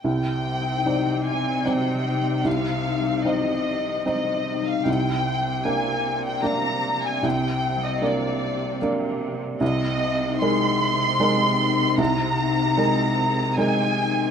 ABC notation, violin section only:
X:1
M:3/4
L:1/16
Q:1/4=76
K:Cm
V:1 name="Violin section"
g6 a2 g4 | f4 e4 e3 f | g4 a3 g b3 a | g3 e d4 z4 |
e4 c'8 | b8 a4 |]